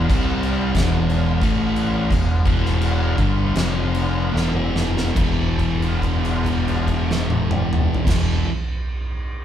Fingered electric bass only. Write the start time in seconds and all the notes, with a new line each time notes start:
0.09 C2
0.74 E1
1.42 A1
2.11 E1
2.46 E1
3.18 G1
3.55 F1
4.34 E1
5.16 E1
8.06 E1